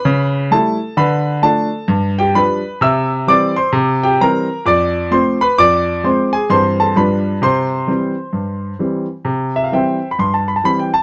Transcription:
X:1
M:4/4
L:1/16
Q:"Swing" 1/4=130
K:C
V:1 name="Grand piano"
[Bb]4 [Aa]4 [Bb]4 [Aa]4 | z2 [Gg]2 [Bb]4 [ee']4 [dd']2 [cc']2 | z2 [Gg]2 [_B_b]4 [dd']4 [cc']2 [=B=b]2 | [dd']4 [cc']2 [_A_a]2 [cc']2 [=A=a]2 [Bb]4 |
[cc']12 z4 | z2 e f [ceg]3 b c' a b a b g a2 |]
V:2 name="Grand piano" clef=bass
^C,4 [G,A,E]4 D,4 [F,A,D]4 | G,,4 [F,G,D]4 C,4 [E,G,C]4 | C,4 [E,G,C]4 F,,4 [F,A,C]4 | F,,4 [F,_A,C]4 [G,,E,G,C]4 [G,,F,G,D]4 |
C,4 [E,G,C]4 G,,4 [E,G,C]4 | C,4 [E,G,C]4 G,,4 [E,G,C]4 |]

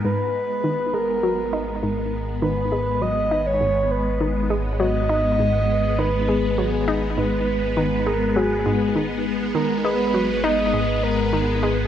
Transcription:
X:1
M:4/4
L:1/16
Q:1/4=101
K:G#m
V:1 name="Soft synth lead"
B6 A8 z2 | B4 d3 c3 B4 z2 | d8 B4 G3 z | B6 A2 G6 z2 |
A2 B4 d4 A4 z2 |]
V:2 name="String machine"
[G,B,]16- | [G,B,]16- | [G,B,]16- | [G,B,]16- |
[G,B,]16 |]
V:3 name="Synth arpeggio sound" clef=bass
G,,2 z2 D,2 G,2 F,2 D2 G,,2 z2 | D,2 G,2 F,2 D2 G,,2 z2 D,2 G,2 | F,2 D2 G,,2 z2 D,2 G,2 F,2 D2 | G,,2 z2 D,2 G,2 F,2 G,,2 D,2 z2 |
D,2 G,2 F,2 D2 G,,2 z2 D,2 G,2 |]
V:4 name="Synth drone" clef=bass
G,,,16- | G,,,16- | G,,,16- | G,,,16 |
G,,,16 |]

